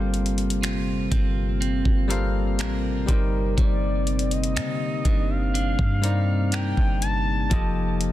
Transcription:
Already playing: 808-style bass G1, analog synth pad C3 A#3 C4 F4, tine electric piano G3 G4 A4 A#4 C5 F5, clean electric guitar G3 C4, soft synth lead C5
0.14 closed hi-hat
0.26 closed hi-hat
0.38 closed hi-hat
0.50 closed hi-hat
0.62 clean electric guitar F4, finger snap, closed hi-hat
1.11 808-style bass G1, clean electric guitar C4, kick, closed hi-hat
1.61 clean electric guitar C4, closed hi-hat
1.85 808-style bass G1, kick
2.08 tine electric piano G3 G4 A4 A#4 C5 F5, clean electric guitar F4, closed hi-hat
2.59 808-style bass A1, clean electric guitar C4 F4 A#4, finger snap, closed hi-hat
3.07 808-style bass G1, tine electric piano G3 D#4 G4 A#4 C5, clean electric guitar G3, soft synth lead A#4, kick, closed hi-hat
3.58 808-style bass G1, clean electric guitar G3, soft synth lead D5, kick, closed hi-hat
4.07 closed hi-hat
4.19 closed hi-hat
4.31 soft synth lead D#5, closed hi-hat
4.43 closed hi-hat
4.56 808-style bass D3, clean electric guitar D#4, finger snap, closed hi-hat
5.05 808-style bass G1, analog synth pad A#3, clean electric guitar D4, kick, closed hi-hat
5.30 soft synth lead F5
5.54 clean electric guitar D4, closed hi-hat
5.79 808-style bass G2, kick
6.02 tine electric piano G3 D#4 G4 A#4 C5 D5, clean electric guitar D#4, closed hi-hat
6.52 clean electric guitar D4 D#4 A#4, soft synth lead G5, finger snap, closed hi-hat
6.77 808-style bass G1, kick
7.02 soft synth lead A5, closed hi-hat
7.49 808-style bass F1, tine electric piano F3 F4 G4 A4 D#5, clean electric guitar F3, kick, closed hi-hat
8.01 closed hi-hat

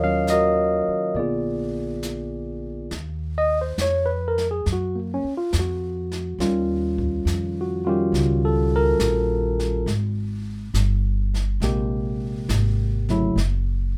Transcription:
Already playing: upright bass D#2, tine electric piano F#3 A#3 D#4 F4 F#4 A#4 C#5 D#5 F5
0.01 tine electric piano D#3 F#3 C#4 F5
0.27 tine electric piano D#5, snare, hi-hat pedal
0.32 tine electric piano F#4 A#4
0.88 muted upright bass stroke
1.14 upright bass A#1, tine electric piano D3 A#3 D5, brush sweep
1.18 tine electric piano B3 F4 G#4
2.03 snare, hi-hat pedal
2.91 upright bass D#2, brush sweep, snare
3.38 tine electric piano D#5
3.61 tine electric piano C5
3.78 upright bass F2, tine electric piano C#5, snare, hi-hat pedal
4.06 tine electric piano B4
4.28 tine electric piano A#4
4.38 snare
4.51 tine electric piano G#4
4.66 upright bass F#2, brush sweep, snare
4.73 tine electric piano F#4
4.95 tine electric piano A#3
5.14 tine electric piano C#4
5.24 muted upright bass stroke
5.37 tine electric piano F4
5.53 upright bass F2, snare, hi-hat pedal
5.59 tine electric piano F#4
6.12 snare
6.38 upright bass D#2, tine electric piano D#3 G3 C#4 F4, brush sweep, snare
6.98 kick
7.25 upright bass F2, snare, hi-hat pedal
7.61 tine electric piano F#4
7.85 tine electric piano D#3 G3 C#4 F4 F#4
7.89 tine electric piano G4
8.12 upright bass C#2, brush sweep, snare
8.45 tine electric piano A4
8.76 tine electric piano A#4
8.99 upright bass A#1, snare, hi-hat pedal
9.59 snare
9.86 upright bass G#1, brush sweep, snare
10.74 upright bass G1, snare, hi-hat pedal
11.34 snare
11.60 upright bass A#1, tine electric piano C3 G#3 A#3 G4, brush sweep, snare
12.48 upright bass G#1, snare, hi-hat pedal
13.09 tine electric piano C#3 F#3 A3 E4, snare
13.36 upright bass F#1, brush sweep, snare

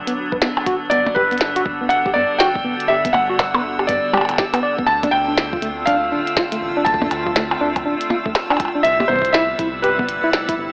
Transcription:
Already playing: ambient pad D3 F#3 B3 D4, synth texture E6
0.07 tine electric piano B3, closed hi-hat
0.32 analog synth bass F#1, tine electric piano B4, kick
0.42 tine electric piano B3, snare, closed hi-hat
0.57 percussion blips
0.66 tine electric piano F#4, kick, closed hi-hat
0.90 analog synth bass G1, ambient pad G3 B3, tine electric piano B3, felt piano D5, closed hi-hat
1.07 percussion blips
1.15 analog synth bass G1, tine electric piano G4, felt piano B4, kick
1.31 tine electric piano B3, closed hi-hat
1.38 snare, closed hi-hat
1.56 tine electric piano F#4, closed hi-hat
1.66 analog synth bass G1, kick
1.81 tine electric piano B3
1.89 felt piano F#5, closed hi-hat
2.06 tine electric piano G4, kick
2.14 analog synth bass G2, tine electric piano B3, felt piano D5
2.39 tine electric piano F#4, felt piano G5, snare, closed hi-hat
2.55 kick
2.65 analog synth bass D1, tine electric piano B3
2.80 closed hi-hat
2.88 analog synth bass G1, tine electric piano G4, felt piano E5
3.05 tine electric piano B3, kick, closed hi-hat
3.13 analog synth bass G1, felt piano F#5, percussion blips
3.30 tine electric piano F#4
3.39 kick, snare, closed hi-hat
3.54 tine electric piano B3, percussion blips
3.64 analog synth bass G1
3.79 tine electric piano G4, percussion blips
3.87 analog synth bass G2, tine electric piano B3, felt piano D5, kick, closed hi-hat
4.13 tine electric piano G4, percussion blips
4.17 percussion blips
4.21 percussion blips
4.25 closed hi-hat, percussion blips
4.29 analog synth bass D1, percussion blips
4.31 percussion blips
4.34 percussion blips
4.36 tine electric piano G4, kick, snare, percussion blips
4.54 tine electric piano B3, closed hi-hat, percussion blips
4.63 tine electric piano D5
4.78 tine electric piano B3, kick
4.86 analog synth bass D2, ambient pad A3 C4 F4, felt piano A5
5.03 tine electric piano D4, kick, closed hi-hat, percussion blips
5.11 analog synth bass D2, felt piano G5
5.28 tine electric piano D4
5.38 snare, closed hi-hat
5.53 tine electric piano F4, kick
5.62 analog synth bass D2, tine electric piano A3, closed hi-hat
5.86 tine electric piano D4, felt piano F5, kick, closed hi-hat
6.12 analog synth bass D1, tine electric piano D4
6.27 closed hi-hat
6.37 tine electric piano F4, kick, snare
6.52 tine electric piano A3, closed hi-hat
6.61 analog synth bass A1
6.77 tine electric piano D4
6.85 analog synth bass D2, felt piano A5, kick, closed hi-hat
6.94 kick
7.02 tine electric piano D4, kick, percussion blips
7.06 kick
7.11 analog synth bass D2, closed hi-hat, percussion blips
7.26 tine electric piano F4, kick
7.36 tine electric piano A3, snare, closed hi-hat
7.51 percussion blips
7.61 analog synth bass D2, tine electric piano D4
7.76 kick, closed hi-hat, percussion blips
7.86 analog synth bass D1, tine electric piano D4
8.01 closed hi-hat
8.10 tine electric piano F4, percussion blips
8.26 analog synth bass A1, tine electric piano A3, kick
8.35 snare, closed hi-hat
8.50 tine electric piano D4, percussion blips
8.57 kick, closed hi-hat, percussion blips
8.60 percussion blips
8.65 percussion blips
8.68 percussion blips
8.75 tine electric piano D4
8.83 analog synth bass C2, ambient pad C3 G3 B3 E4, felt piano E5, closed hi-hat
9.00 tine electric piano G4, percussion blips
9.08 analog synth bass C2, tine electric piano B3, felt piano C5, kick
9.13 kick
9.16 kick
9.19 kick
9.22 kick, closed hi-hat
9.33 tine electric piano E4, felt piano E5, snare
9.59 analog synth bass C2, tine electric piano E4, kick, closed hi-hat
9.82 tine electric piano G4, felt piano B4, closed hi-hat
9.99 tine electric piano B3, kick
10.09 analog synth bass G1, closed hi-hat
10.24 tine electric piano E4
10.33 snare
10.49 tine electric piano E4, kick, closed hi-hat
10.58 analog synth bass G1

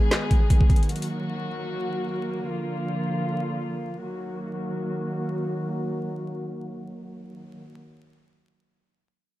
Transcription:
Already playing: string section D#3 G#3 B3 G#4, downlifter
0.11 snare, clap, closed hi-hat
0.31 kick, closed hi-hat
0.50 kick, closed hi-hat
0.61 kick
0.70 kick, closed hi-hat
0.76 closed hi-hat
0.83 closed hi-hat
0.89 string section F#3 A#3 F#4, closed hi-hat
0.96 closed hi-hat
1.02 closed hi-hat
2.45 string section D3 F3 F4
4.01 string section D#3 F#3 A#3 F#4

